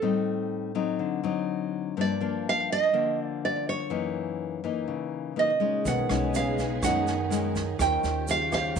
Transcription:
Already playing: A4
0.02 A2 G3 C4 D#4
0.75 F#3 C4 D#4
0.99 D3
1.24 F#3 C4 D#4
1.97 G2 F3 A#3 D4
2.01 D5
2.21 F3 A#3 D4
2.49 F5
2.72 D#5
2.93 D3 F3 A#3
3.23 D5
3.45 D5
3.69 C#5
3.90 F#2 E3 A#3 D#4
4.64 E3 A#3 D#4
4.88 C#3
5.36 A#2 E3 A#3 D#4 D#5
5.60 G#3 C#4 D#4
5.85 B1 B2 D#3 B3 D#4 G#4 F#5, kick, snare, shaker
6.09 B1 G#3 C#4 D#4, cross-stick, snare, shaker
6.34 C#3 F5, snare, shaker
6.58 kick, snare, shaker
6.82 F#2 D#3 F#3 G#3 C#4 D#4 F#5, kick, cross-stick, snare, shaker
7.07 snare, shaker
7.30 G#3 C#4 D#4, snare, shaker
7.55 kick, snare, shaker
7.79 D#2 D#3 C#4 F4 G4 C5 G5, kick, cross-stick, snare, shaker
8.03 D#2, snare, shaker
8.28 C#3 F5, snare, shaker
8.52 C#3 C#4 G4 C5 F5, kick, cross-stick, snare, shaker
8.76 A#1 A#2, kick, snare, shaker

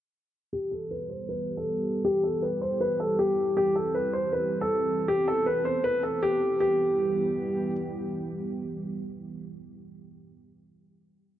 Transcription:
0.53 E3 G3 B3 G4
0.71 A4
0.91 B4
1.10 C5
1.29 B4
1.57 A4
2.05 G4
2.23 A4
2.42 B4
2.62 C5
2.81 B4
3.00 A4
3.19 G4
3.57 C4 G4
3.76 A4
3.95 B4
4.13 C5
4.33 B4
4.61 A4
5.08 B3 G4 A4
5.28 A4
5.46 B4
5.65 C5
5.84 B4
6.03 A4
6.23 G4
6.60 E3 G3 B3 G4

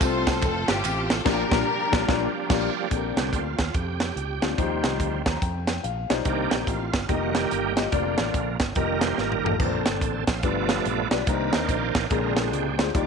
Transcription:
Already playing: A3 C4 F4
0.00 C2 C4 F4 A4 C5, kick, clap, ride, tambourine
0.27 kick, snare, ride, tambourine
0.42 F1 C4 F4 A4, kick, clap, ride, tambourine
0.68 G1 C4 G4, snare, ride, tambourine
0.84 A1, clap, ride, tambourine
1.10 A4, snare, ride, tambourine
1.25 A#1 A#2 F3 G3 A#3 D4 F4 G4 A#4, kick, snare, crash
1.51 A#1 A#2 G3 A#3 D4 F4 A#4, kick, snare
1.92 A#1 G3 A#3 D4 F4, kick, snare
2.08 A#1 G3 A#3 D4 F4, kick, snare
2.49 A#1 G3 A#3 D4 F4, kick, snare, crash
2.90 A#1 A#2 G3 C4 D4 G4 A4, kick, closed hi-hat
2.96 A#4
3.16 C2 D3 G3 C4, snare, closed hi-hat
3.33 D2 F4, kick, closed hi-hat
3.58 D#2, kick, snare, closed hi-hat
3.74 F2 G4, kick, closed hi-hat
4.00 G4, snare, closed hi-hat
4.16 C#2, closed hi-hat
4.42 D2 G3 C4 D4 F4, snare, closed hi-hat
4.57 D#2 D#3 F3 G3 C4 D#4 F4 C5, kick, closed hi-hat
4.63 G3
4.84 C2, snare, closed hi-hat
5.00 D2, kick, closed hi-hat
5.25 D#2 F3 G3 C4 A#5, kick, snare, closed hi-hat
5.42 F2 G5, kick, closed hi-hat
5.67 G5, snare, closed hi-hat
5.83 A#1 F5, closed hi-hat
6.10 B1 G3 D#4 F4 C5 D5, snare, closed hi-hat
6.25 C2 C3 D#3 A#3 D4 D#4 G4 C5, kick, closed hi-hat
6.51 A#1, snare, closed hi-hat
6.67 A1 F4, kick, closed hi-hat
6.93 G1, kick, snare, closed hi-hat
7.08 F1 D#3 G3 A#3 D#4 F4 G4 D#5, kick, closed hi-hat
7.23 F#4
7.35 G4, snare, closed hi-hat
7.51 G1, closed hi-hat
7.76 A#3 F4 G4 D#5, snare, closed hi-hat
7.92 F1 D3 F3 A#3 D4 F4 D5, kick, closed hi-hat
8.18 A1, snare, closed hi-hat
8.34 A#1, kick, closed hi-hat
8.60 G1, kick, snare, closed hi-hat
8.75 F1 D#3 G3 A#3 F4 G4 A#4 D#5, kick, closed hi-hat
9.01 C5, snare, closed hi-hat
9.18 G#1 A#4, snare
9.32 mid tom
9.44 A1 A#3 F4 G4 A4 A#4, floor tom
9.59 A#1 A#2 D3 A#3 C4 D4 A4 B4, kick, splash
9.64 C5
9.86 G1, snare, closed hi-hat
10.01 A1, kick, closed hi-hat
10.27 A#1 C5, kick, snare, closed hi-hat
10.39 F5, closed hi-hat
10.43 G1 G2 F3 G3 A3 B3 D4 F4 B4 D5, kick
10.69 snare, closed hi-hat
10.85 A#1, closed hi-hat
11.11 B1 G3 D4 F4 B4 D5, snare, closed hi-hat
11.26 C2 C3 D#3 A#3 D4 D#4 C5 D5, kick, closed hi-hat
11.53 D#2 C5, snare, closed hi-hat
11.69 A#1, kick, closed hi-hat
11.95 A1, kick, snare, closed hi-hat
12.10 A#1 A#2 D3 G#3 C4 C#4 F4 A#4, kick, closed hi-hat
12.16 D4
12.37 snare, closed hi-hat
12.47 F#4
12.53 C#2 G4, closed hi-hat
12.78 D2 G#3 D4 F4 C5, snare, closed hi-hat
12.94 D#2 D#3 F3 G3 D#4 F4 D5, kick, closed hi-hat

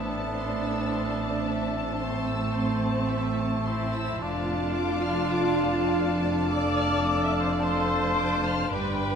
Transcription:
Already playing: A1 A2 A3 B3 C4 D4 C5 D5 E5 A5
0.11 A5
0.37 C6
0.65 E6
0.92 C6
1.19 A5
1.47 E5
1.75 A5
1.99 C4 C5 C6
2.03 A3
2.27 E6
2.53 C6
2.79 A5
3.08 E5
3.38 A5
3.64 C4 E4 E5 C6
3.92 E6
4.20 F1 F2 A3 D4 F4 D5 F5 A5
4.47 A5
4.76 D6
5.03 F6
5.31 D6
5.60 A5
5.89 F5
6.19 A5
6.46 A4 D5 D6
6.78 F6
7.06 D6
7.25 E5
7.32 D5 A5
7.41 C5
7.50 D5
7.58 A4 C5 F5 C6
7.88 A5
8.17 D6
8.44 F6
8.71 G1 G2 G3 D4 G4 B4 D5 G5 B5
9.01 G5

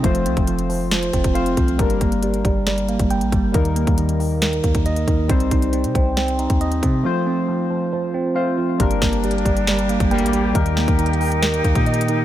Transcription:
0.02 F1 F3 A3 C4 F4 C5, kick, closed hi-hat
0.15 closed hi-hat
0.26 C2 C4, closed hi-hat
0.37 F1, kick, closed hi-hat
0.47 F3, closed hi-hat
0.59 closed hi-hat
0.70 F3, open hi-hat
0.91 F3, snare, closed hi-hat
1.03 closed hi-hat
1.13 F1 C4, kick, closed hi-hat
1.24 kick, closed hi-hat
1.34 A3 C4 F4 C5 F5, closed hi-hat
1.46 closed hi-hat
1.57 C2 F3, kick, closed hi-hat
1.68 closed hi-hat
1.78 G1 G3 A#3 D4 A#4, kick, closed hi-hat
1.90 closed hi-hat
2.01 G1 A#3, kick, closed hi-hat
2.12 closed hi-hat
2.23 G3, closed hi-hat
2.34 closed hi-hat
2.45 G1 G3, kick, closed hi-hat
2.67 G3, snare, closed hi-hat
2.78 closed hi-hat
2.89 A#3, closed hi-hat
2.99 G1, kick, closed hi-hat
3.10 G5, closed hi-hat
3.21 A1, closed hi-hat
3.32 G1 G3, kick, closed hi-hat
3.52 D#2 D#3 G3 A#3 D#4 A#4, kick, closed hi-hat
3.65 closed hi-hat
3.76 A#3, closed hi-hat
3.87 D#2, kick, closed hi-hat
3.98 D#3, closed hi-hat
4.09 closed hi-hat
4.20 D#3, open hi-hat
4.42 D#3, snare, closed hi-hat
4.53 closed hi-hat
4.63 D#2 A#3, kick, closed hi-hat
4.75 kick, closed hi-hat
4.86 D#5, closed hi-hat
4.96 closed hi-hat
5.08 D#2 D#3, kick, closed hi-hat
5.28 C2 G3 C4 D#4 C5, kick, closed hi-hat
5.40 closed hi-hat
5.51 C2 D#4, kick, closed hi-hat
5.62 closed hi-hat
5.73 C4, closed hi-hat
5.84 C3, closed hi-hat
5.95 C2 C4, kick, closed hi-hat
6.17 C4, snare, closed hi-hat
6.28 closed hi-hat
6.39 D#4, closed hi-hat
6.50 D#2, kick, closed hi-hat
6.61 D#5, closed hi-hat
6.72 closed hi-hat
6.83 C3 C4, kick, closed hi-hat
7.03 F3 A3 C4 F4 C5
7.26 C4
7.48 F3
7.70 F3
7.93 F3
8.14 C4
8.34 A3 C4 F4 C5 F5
8.58 F3
8.78 G1 G3 A#3 D4 G4 A#4 G5, kick, closed hi-hat
8.91 closed hi-hat
9.02 G1 A#3, kick, snare
9.13 closed hi-hat
9.24 G3, closed hi-hat
9.31 closed hi-hat
9.38 closed hi-hat
9.45 G1 G3, kick, closed hi-hat
9.57 closed hi-hat
9.67 G3, snare, closed hi-hat
9.79 closed hi-hat
9.89 A#3, closed hi-hat
10.00 G1, kick, closed hi-hat
10.11 D2 G3 A#3 G5, closed hi-hat
10.19 A1, closed hi-hat
10.26 closed hi-hat
10.33 G3, closed hi-hat
10.53 D#2 D#3 G3 A#3 D#4 A#4, kick, closed hi-hat
10.66 closed hi-hat
10.77 A#3, snare
10.88 D#2, kick, closed hi-hat
10.98 D#3, closed hi-hat
11.06 closed hi-hat
11.13 closed hi-hat
11.21 D#3, open hi-hat
11.32 closed hi-hat
11.43 D#3, snare, closed hi-hat
11.54 closed hi-hat
11.64 D#2 A#3, kick, closed hi-hat
11.75 A#2, kick, closed hi-hat
11.86 D#5, closed hi-hat
11.94 closed hi-hat
12.01 closed hi-hat
12.08 D#3, closed hi-hat

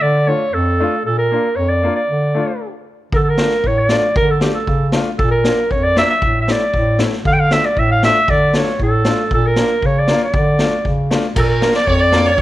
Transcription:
0.01 D3 D5
0.27 A3 D4 F4 C#5
0.52 F2 A4
0.80 A3 D4 F4
1.05 A#2 A4
1.18 A#4
1.31 A#3 D4 F4
1.56 F2 C#5
1.69 D5
1.83 A#3 D4 F4
1.95 D5
2.08 D3
2.35 A3 D4 F4
3.12 D3 A4 A#4, kick
3.23 A4
3.29 A#4
3.37 A3 D4 F4, snare
3.50 snare
3.63 A2 C#5, kick
3.79 D5
3.89 A3 D4 F4, snare
4.15 D3 A#4, kick
4.30 A4
4.41 A3 D4 F4 G4, snare
4.54 A4
4.67 C#3, kick
4.92 A3 D4 F4, snare
5.18 A#2 A4, kick
5.31 A#4
5.44 A#3 D4 F4, snare
5.70 F2 C#5, kick
5.84 D5
5.96 A#3 D4 F4 E5, snare
6.00 D5
6.05 E5
6.09 E5, snare
6.22 A2, kick
6.42 E5
6.48 A3 C#4 E4 D5, snare
6.73 A2, kick
6.99 A3 C#4 E4, snare
7.12 snare
7.25 D3 F5, kick
7.33 G5
7.40 F5
7.51 A3 D4 F4 E5, snare
7.65 D5
7.77 A2 E5, kick
7.92 F5
8.03 A3 D4 F4 E5, snare
8.28 D3 D5, kick
8.53 A3 D4 F4 C#5, snare
8.66 snare
8.79 A2 A4, kick
9.05 A3 D4 F4, snare
9.30 A#2 A4, kick
9.47 A#4
9.56 A#3 D4 F4, snare
9.82 C#3, kick
9.86 C#5
9.99 D5
10.08 A#3 D4 F4, snare
10.24 D5
10.33 D3, kick
10.59 A3 D4 F4, snare
10.85 C#3, kick
11.11 A3 D4 F4, snare
11.35 A#2 A4 A#4, kick, crash
11.43 A#4
11.49 A#4
11.62 A#3 D4 F4, snare
11.74 D5, snare
11.87 F2 C#5, kick
12.00 D5
12.12 A#3 D4 F4, snare
12.25 C#5, snare
12.38 G2, kick

